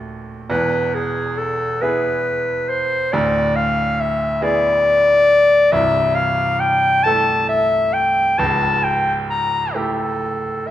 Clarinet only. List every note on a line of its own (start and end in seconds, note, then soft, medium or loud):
0.50 0.96 B4 medium
0.95 1.39 G#4 medium
1.38 1.83 A4 medium
1.82 2.71 B4 medium
2.69 3.14 C5 medium
3.12 3.58 D5 medium
3.56 4.02 F5 medium
4.00 4.45 E5 medium
4.43 5.74 D5 loud
5.72 6.16 E5 loud
6.15 6.61 F5 medium
6.60 7.05 G5 loud
7.04 7.48 A5 loud
7.49 7.95 E5 medium
7.93 8.40 G5 medium
8.39 8.85 A5 medium
8.84 9.17 G5 medium
9.30 9.77 A#5 medium
9.76 10.69 A4 medium
10.67 10.71 E5 medium